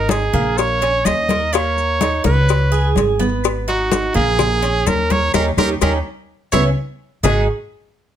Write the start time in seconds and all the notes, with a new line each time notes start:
Already playing: G#1 D#4 A#4
0.09 G#4, cowbell, high conga, maracas
0.33 A#1 A#3, high conga, low conga, claves, maracas
0.58 C#5, cowbell, high conga, maracas
0.81 C#4, cowbell, high conga, maracas
1.05 D#2 D#5, cowbell, high conga, claves, maracas
1.29 A#4, cowbell, high conga, maracas
1.53 A#3 C#5, cowbell, high conga, claves, maracas
1.76 high conga, maracas
2.01 D#4, cowbell, high conga, maracas
2.24 C#2 B4 C#5, high conga, maracas
2.49 cowbell, high conga, claves, maracas
2.72 G#4, high conga, maracas
2.95 G#1, cowbell, high conga, maracas
3.19 B3, high conga, maracas
3.44 cowbell, high conga, claves, maracas
3.68 D#4 F#4, cowbell, high conga, maracas
3.92 cowbell, high conga, maracas
4.14 A#1 A#3 G#4, high conga, low conga, claves, maracas
4.39 cowbell, high conga, low conga, maracas
4.62 C#4, cowbell, high conga, maracas
4.86 D#2 A#4, cowbell, high conga, claves, maracas
5.10 A#4 C#5, cowbell, high conga, maracas
5.34 D#2 C#4 D#4 G4 A#4, cowbell, high conga, claves, maracas
5.57 D#2 C#4 D#4 G4 A#4, cowbell, high conga, claves, maracas
5.81 D#2 C#4 D#4 G4 A#4, cowbell, high conga, claves, maracas
6.52 C#2 B3 C#4 E4 C#5, cowbell, high conga, claves, maracas
7.23 G#1 G#3 D#4 F#4 G#4, low bongo, low conga, claves, maracas